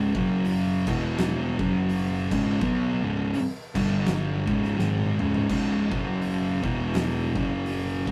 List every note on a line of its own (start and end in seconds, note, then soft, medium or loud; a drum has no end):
0.00 0.12 C#1 loud
0.00 0.14 C#2 medium
0.00 0.14 G#2 loud
0.00 0.14 C#3 loud
0.15 0.83 F#1 loud
0.15 0.86 F#2 loud
0.15 0.86 C#3 loud
0.15 0.86 F#3 loud
0.15 kick loud
0.45 open hi-hat medium
0.87 1.55 E1 loud
0.87 1.58 E2 medium
0.87 1.58 B2 loud
0.87 1.58 E3 loud
0.87 kick loud
0.87 crash loud
1.19 snare loud
1.59 2.27 F#1 loud
1.59 2.30 F#2 loud
1.59 2.30 C#3 loud
1.59 2.31 F#3 loud
1.59 kick loud
1.89 open hi-hat medium
2.31 2.59 C#1 loud
2.31 2.61 C#2 loud
2.31 2.61 G#2 loud
2.31 2.61 C#3 loud
2.31 kick loud
2.31 crash loud
2.61 3.01 B1 loud
2.61 3.02 B2 medium
2.61 3.02 F#3 loud
2.61 3.03 B3 loud
2.61 kick loud
3.03 3.31 C#1 loud
3.03 3.32 C#2 loud
3.03 3.33 G#2 loud
3.03 3.33 C#3 loud
3.34 open hi-hat medium
3.75 4.43 G1 loud
3.75 4.46 G2 loud
3.75 4.46 D3 loud
3.75 4.46 G3 loud
3.75 kick loud
3.75 crash loud
4.07 snare loud
4.47 4.76 C#1 loud
4.47 4.77 C#2 loud
4.47 4.77 G#2 loud
4.47 4.77 C#3 loud
4.47 kick loud
4.64 snare soft
4.78 5.17 G#1 loud
4.78 5.18 G#2 medium
4.78 5.19 D#3 medium
4.78 5.19 G#3 loud
4.78 snare medium
4.98 high tom medium
5.19 5.47 C#1 loud
5.19 5.48 C#2 medium
5.19 5.49 G#2 loud
5.19 5.50 C#3 loud
5.19 mid tom medium
5.34 floor tom medium
5.49 5.90 C#2 medium
5.49 5.91 G#2 loud
5.49 5.91 C#3 loud
5.49 kick loud
5.49 crash loud
5.91 6.60 F#1 loud
5.91 6.62 F#2 medium
5.91 6.63 C#3 loud
5.91 6.63 F#3 loud
5.91 kick loud
6.21 open hi-hat medium
6.63 7.32 E1 loud
6.63 7.34 E2 loud
6.63 7.34 B2 loud
6.63 7.35 E3 loud
6.63 kick loud
6.94 snare loud
6.94 open hi-hat medium
7.35 8.04 F#1 loud
7.35 8.06 F#2 medium
7.35 8.07 C#3 loud
7.35 8.07 F#3 loud
7.35 kick loud
7.66 open hi-hat medium
8.07 8.11 C#1 loud
8.07 8.11 C#2 medium
8.07 8.11 G#2 medium
8.07 8.11 C#3 loud
8.07 kick loud